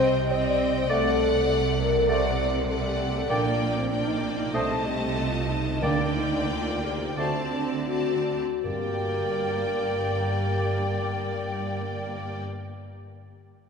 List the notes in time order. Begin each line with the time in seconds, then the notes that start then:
Already playing: C2 C3 C4 C5 D#5 G5
0.30 C4 D#5 G5
0.44 D5
0.76 C5
0.89 C2 C3 A3 A4 D5 F#5
1.80 A#4
2.08 A3 C5 D5 F#5
2.26 D5
2.56 A#4
2.69 A3 A4 D5 F#5
2.85 G4
3.15 A4
3.29 A#1 A#2 A#3 D4 D5 G5
3.77 C4
3.90 A#3 D4 D5 G5
4.08 D#4
4.23 D4
4.39 D#4
4.53 C2 C3 A3 D4 C5 D#5 A5
4.70 A4
4.85 G4
5.18 F4
5.49 D#4
5.81 D2 D3 A#3 D4 D5 G5
6.15 D#4
6.49 F4
6.83 G4
7.16 D2 D3 A3 C4 F#4 C5 D5 A5
7.52 D4
7.87 C4 F#4 D5 A5
8.63 G1 G2 A#3 G4 A#4 D5 G5